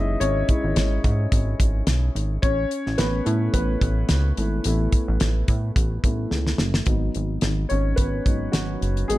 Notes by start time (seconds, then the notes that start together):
Already playing: F#1 G#3 C#4 D#4 E4 C#5 D#5 E5
0.20 G#1 C#4 C#5, closed hi-hat
0.49 G#3 C#4 E4, kick, closed hi-hat
0.64 G#1
0.76 G#1 C#4 C#5, snare, closed hi-hat
1.04 G#2, kick, closed hi-hat
1.32 G#1, kick, closed hi-hat
1.60 G#1, kick, closed hi-hat
1.87 B1, snare, closed hi-hat
2.15 G#1, closed hi-hat
2.42 A1 C#4 C#5, kick, closed hi-hat
2.71 closed hi-hat
2.86 A1, snare
2.98 A1 B3 B4, snare, closed hi-hat
3.25 A2 A3 B3 E4, closed hi-hat
3.54 A1 B3 B4, kick, closed hi-hat
3.81 A1, kick, closed hi-hat
4.09 C#2, snare, closed hi-hat
4.37 G#1 A3 B3 E4, closed hi-hat
4.64 A1 A3 B3 E4, closed hi-hat
4.92 kick, closed hi-hat
5.08 A1
5.20 A1, snare, closed hi-hat
5.48 A2, kick, closed hi-hat
5.76 A1, kick, closed hi-hat
6.04 A1 A3 B3 E4, kick, closed hi-hat
6.31 C#2, snare
6.47 snare
6.58 F#1, snare
6.74 snare
6.86 G#1 F#3 B3 D#4, kick, closed hi-hat
7.15 G#1, closed hi-hat
7.41 G#1, snare, closed hi-hat
7.69 G#1 C#4 C#5, closed hi-hat
7.96 G#1 B3 B4, kick, closed hi-hat
8.26 G#1 F#3 B3 D#4, kick, closed hi-hat
8.52 G#1 F#3 F#4, snare, closed hi-hat
8.81 F#1, closed hi-hat
8.97 closed hi-hat
9.08 G#1 F#3 G#3 B3 D#4 G#4, closed hi-hat